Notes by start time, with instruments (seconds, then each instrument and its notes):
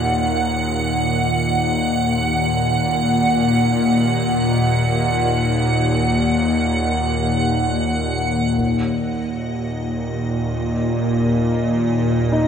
Already playing: synth drone D#2 A#2, ambient pad F#5
8.58 synth drone D#2 A#2, ambient pad D#5, taiko
12.32 grand piano D#4